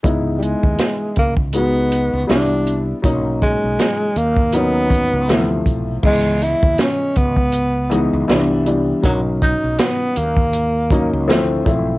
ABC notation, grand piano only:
X:1
M:4/4
L:1/8
Q:"Swing 16ths" 1/4=80
K:C#dor
V:1 name="Grand piano"
[G,B,DE]3 z [G,B,DF]2 [=G,B,=DE]2 | [F,A,CD]3 z [F,CDA]2 [=C,E,=F,=A,E]2 | [E,G,B,d]3 z2 [E,G,B,D] [E,=G,B,=D] [E,G,B,D] | [F,CDA]3 z2 [F,A,CD] [=F,=A,=CE] [F,A,CE] |]